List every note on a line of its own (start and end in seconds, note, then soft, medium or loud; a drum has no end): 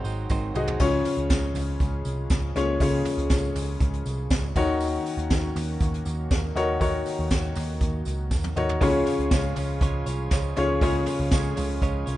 0.00 0.82 G#2 medium
0.00 0.76 D#3 medium
0.00 0.77 G#3 medium
0.00 0.77 C4 medium
0.00 0.55 F#4 loud
0.00 0.77 F#4 medium
0.00 0.56 G#4 medium
0.00 0.82 C5 loud
0.04 0.25 G#1 loud
0.04 0.29 F#3 soft
0.04 0.30 C4 medium
0.04 0.30 D#4 medium
0.04 0.30 C5 medium
0.04 closed hi-hat medium
0.04 tambourine medium
0.29 0.51 G#1 medium
0.29 0.55 G#2 medium
0.29 0.55 D#3 medium
0.29 0.55 F#3 medium
0.29 0.55 C4 loud
0.29 0.54 D#4 medium
0.29 0.53 C5 loud
0.29 kick loud
0.29 high tom medium
0.29 tambourine medium
0.54 0.75 C2 medium
0.54 0.81 F#3 soft
0.54 0.81 C4 medium
0.54 0.80 D#4 medium
0.54 0.79 F#4 medium
0.54 0.79 G#4 medium
0.54 0.80 C5 medium
0.54 0.79 D#5 loud
0.54 mid tom medium
0.54 tambourine soft
0.67 floor tom medium
0.79 1.01 C#2 loud
0.79 1.51 C#3 medium
0.79 4.52 F3 medium
0.79 4.52 G#3 medium
0.79 2.78 C#4 medium
0.79 1.73 C#4 medium
0.79 1.73 F4 medium
0.79 4.52 G#4 medium
0.79 1.74 G#4 medium
0.79 1.74 C#5 loud
0.79 kick loud
0.79 crash medium
0.79 tambourine medium
0.93 open hi-hat medium
1.05 floor tom medium
1.05 hi-hat pedal medium
1.05 open hi-hat medium
1.05 tambourine soft
1.17 1.28 C#2 medium
1.17 hi-hat pedal medium
1.30 1.51 C#2 loud
1.30 kick loud
1.30 snare loud
1.30 hi-hat pedal medium
1.30 open hi-hat medium
1.30 tambourine medium
1.54 1.75 C#2 loud
1.54 floor tom medium
1.54 hi-hat pedal medium
1.54 open hi-hat medium
1.54 tambourine medium
1.80 2.01 C#2 loud
1.80 kick loud
1.80 hi-hat pedal medium
1.80 open hi-hat medium
1.80 tambourine soft
2.05 2.26 C2 medium
2.05 hi-hat pedal medium
2.05 open hi-hat medium
2.05 tambourine medium
2.30 2.51 C#2 medium
2.30 kick loud
2.30 snare loud
2.30 hi-hat pedal medium
2.30 open hi-hat loud
2.30 tambourine medium
2.56 2.76 C#2 medium
2.56 2.79 C#4 medium
2.56 2.79 F4 medium
2.56 2.79 G#4 medium
2.56 2.80 C#5 loud
2.56 snare soft
2.56 floor tom medium
2.56 hi-hat pedal medium
2.56 open hi-hat medium
2.56 tambourine soft
2.79 3.01 C#2 loud
2.79 3.52 C#3 medium
2.79 4.53 C#4 medium
2.79 3.74 C#4 medium
2.79 3.74 F4 medium
2.79 3.74 G#4 medium
2.79 3.75 C#5 medium
2.79 kick loud
2.79 hi-hat pedal medium
2.79 open hi-hat loud
2.79 tambourine medium
2.93 open hi-hat medium
3.05 floor tom medium
3.05 hi-hat pedal medium
3.05 open hi-hat medium
3.05 tambourine soft
3.18 3.28 C#2 loud
3.18 hi-hat pedal medium
3.30 3.51 C#2 loud
3.30 kick loud
3.30 snare loud
3.30 hi-hat pedal medium
3.30 open hi-hat loud
3.30 tambourine medium
3.55 3.76 C#2 loud
3.55 floor tom medium
3.55 hi-hat pedal medium
3.55 open hi-hat medium
3.55 tambourine medium
3.68 open hi-hat soft
3.80 4.01 C#2 loud
3.80 kick loud
3.80 hi-hat pedal medium
3.80 open hi-hat medium
3.80 tambourine soft
3.93 hi-hat pedal medium
4.06 4.26 C2 medium
4.06 hi-hat pedal medium
4.06 open hi-hat medium
4.06 tambourine medium
4.30 4.51 C#2 medium
4.30 kick loud
4.30 snare loud
4.30 hi-hat pedal medium
4.30 open hi-hat medium
4.30 tambourine medium
4.55 4.97 D#2 loud
4.55 8.77 D#3 medium
4.55 5.27 D#3 medium
4.55 8.77 A#3 medium
4.55 6.54 C#4 medium
4.55 5.49 D#4 medium
4.55 8.77 F#4 loud
4.55 5.49 F#4 medium
4.55 5.50 A#4 medium
4.55 5.50 C#5 loud
4.55 kick loud
4.55 floor tom medium
4.55 tambourine soft
4.55 crash medium
4.80 hi-hat pedal medium
4.80 open hi-hat loud
4.80 tambourine medium
4.93 open hi-hat medium
5.06 hi-hat pedal medium
5.06 open hi-hat medium
5.06 tambourine soft
5.17 5.28 D#2 loud
5.17 hi-hat pedal medium
5.30 5.51 D#2 loud
5.30 kick loud
5.30 snare loud
5.30 hi-hat pedal medium
5.30 open hi-hat medium
5.30 tambourine medium
5.56 5.76 D#2 loud
5.56 floor tom medium
5.56 hi-hat pedal medium
5.56 open hi-hat medium
5.56 tambourine medium
5.68 open hi-hat soft
5.80 6.01 D#2 loud
5.80 kick loud
5.80 hi-hat pedal medium
5.80 open hi-hat medium
5.80 tambourine soft
5.94 hi-hat pedal medium
6.05 6.26 D#2 medium
6.05 hi-hat pedal medium
6.05 open hi-hat medium
6.05 tambourine medium
6.31 6.52 D#2 loud
6.31 kick loud
6.31 snare loud
6.31 hi-hat pedal medium
6.31 open hi-hat medium
6.31 tambourine medium
6.56 6.76 D#2 loud
6.56 7.27 D#3 medium
6.56 6.78 D#4 medium
6.56 8.79 D#4 medium
6.56 6.79 F#4 medium
6.56 6.79 A#4 medium
6.56 6.80 C#5 loud
6.56 snare soft
6.56 floor tom medium
6.56 hi-hat pedal medium
6.56 open hi-hat medium
6.56 tambourine soft
6.80 7.01 D#2 loud
6.80 7.74 D#4 medium
6.80 7.74 F#4 medium
6.80 7.74 A#4 medium
6.80 7.75 C#5 loud
6.80 kick loud
6.80 hi-hat pedal medium
6.80 open hi-hat loud
6.80 tambourine medium
7.06 hi-hat pedal medium
7.06 open hi-hat medium
7.06 tambourine soft
7.19 7.29 D#2 loud
7.31 7.52 D#2 loud
7.31 kick loud
7.31 snare loud
7.31 hi-hat pedal medium
7.31 open hi-hat medium
7.31 tambourine medium
7.56 7.77 D#2 loud
7.56 floor tom medium
7.56 hi-hat pedal medium
7.56 open hi-hat medium
7.56 tambourine medium
7.81 8.02 D#2 loud
7.81 kick loud
7.81 hi-hat pedal medium
7.81 open hi-hat medium
7.81 tambourine soft
8.05 8.31 C#2 medium
8.05 hi-hat pedal medium
8.05 open hi-hat medium
8.05 tambourine medium
8.31 8.52 D#2 medium
8.31 kick loud
8.31 snare medium
8.31 tambourine medium
8.44 high tom medium
8.56 8.77 D#2 loud
8.56 8.80 D#4 medium
8.56 8.80 F#4 medium
8.56 8.80 A#4 medium
8.56 8.80 C#5 loud
8.56 mid tom medium
8.56 tambourine soft
8.69 floor tom medium
8.81 9.02 C#2 loud
8.81 9.06 C#3 medium
8.81 9.53 C#3 medium
8.81 12.17 F3 medium
8.81 12.17 G#3 medium
8.81 9.07 G#3 medium
8.81 10.80 C#4 medium
8.81 9.75 C#4 medium
8.81 9.07 C#4 loud
8.81 9.75 F4 medium
8.81 9.06 F4 medium
8.81 12.17 G#4 medium
8.81 9.75 G#4 medium
8.81 9.75 C#5 loud
8.81 9.05 C#5 loud
8.81 kick loud
8.81 hi-hat pedal medium
8.81 open hi-hat loud
8.81 tambourine medium
8.94 open hi-hat medium
9.06 9.31 C#4 medium
9.06 9.31 F4 medium
9.06 9.31 C#5 medium
9.06 floor tom medium
9.06 hi-hat pedal medium
9.06 open hi-hat medium
9.06 tambourine soft
9.19 9.29 C#2 medium
9.19 hi-hat pedal medium
9.30 9.52 C#2 loud
9.30 9.56 G#3 medium
9.30 9.57 C#4 medium
9.30 9.56 F4 medium
9.30 9.55 C#5 medium
9.30 kick loud
9.30 snare loud
9.30 hi-hat pedal medium
9.30 open hi-hat medium
9.30 tambourine medium
9.56 9.77 C#2 medium
9.56 9.81 C#4 medium
9.56 9.81 F4 medium
9.56 9.81 C#5 medium
9.56 floor tom medium
9.56 hi-hat pedal medium
9.56 open hi-hat medium
9.56 tambourine medium
9.80 10.02 C#2 loud
9.80 10.06 C#3 medium
9.80 10.07 G#3 medium
9.80 10.07 C#4 medium
9.80 10.06 F4 medium
9.80 10.05 C#5 loud
9.80 kick loud
9.80 hi-hat pedal medium
9.80 open hi-hat medium
9.80 tambourine soft
10.06 10.27 C2 loud
10.06 10.30 C#4 medium
10.06 10.31 F4 medium
10.06 10.31 C#5 medium
10.06 hi-hat pedal medium
10.06 open hi-hat medium
10.06 tambourine medium
10.31 10.52 C#2 loud
10.31 10.56 G#3 medium
10.31 10.57 C#4 medium
10.31 10.56 F4 medium
10.31 10.55 C#5 medium
10.31 kick loud
10.31 snare loud
10.31 hi-hat pedal medium
10.31 open hi-hat loud
10.31 tambourine medium
10.56 10.78 C#2 loud
10.56 10.80 C#4 medium
10.56 10.81 C#4 soft
10.56 10.80 F4 medium
10.56 10.82 F4 medium
10.56 10.81 G#4 medium
10.56 10.81 C#5 medium
10.56 10.81 C#5 loud
10.56 snare soft
10.56 floor tom medium
10.56 hi-hat pedal medium
10.56 open hi-hat medium
10.56 tambourine soft
10.81 11.02 C#2 loud
10.81 11.07 C#3 medium
10.81 11.53 C#3 medium
10.81 11.07 G#3 medium
10.81 12.17 C#4 medium
10.81 11.75 C#4 medium
10.81 11.07 C#4 medium
10.81 11.76 F4 medium
10.81 11.06 F4 medium
10.81 11.76 G#4 medium
10.81 11.05 C#5 loud
10.81 11.76 C#5 medium
10.81 kick loud
10.81 hi-hat pedal medium
10.81 open hi-hat loud
10.81 tambourine medium
11.06 11.31 C#4 medium
11.06 11.32 F4 medium
11.06 11.32 C#5 medium
11.06 floor tom medium
11.06 hi-hat pedal medium
11.06 open hi-hat medium
11.06 tambourine medium
11.20 11.30 C#2 loud
11.31 11.52 C#2 loud
11.31 11.56 G#3 medium
11.31 11.57 C#4 medium
11.31 11.56 F4 medium
11.31 11.55 C#5 medium
11.31 kick loud
11.31 snare loud
11.31 hi-hat pedal medium
11.31 open hi-hat loud
11.31 tambourine medium
11.56 11.78 C#2 loud
11.56 11.81 C#4 medium
11.56 11.81 F4 medium
11.56 11.82 C#5 medium
11.56 floor tom medium
11.56 hi-hat pedal medium
11.56 open hi-hat medium
11.56 tambourine medium
11.81 12.02 C#2 loud
11.81 12.07 C#3 medium
11.81 12.07 G#3 medium
11.81 12.07 C#4 loud
11.81 12.06 F4 medium
11.81 12.05 C#5 loud
11.81 kick loud
11.81 hi-hat pedal medium
11.81 open hi-hat medium
11.81 tambourine soft
12.06 12.17 C2 medium
12.06 12.17 C#4 medium
12.06 12.17 F4 medium
12.06 12.17 C#5 medium
12.06 hi-hat pedal medium
12.06 open hi-hat medium
12.06 tambourine medium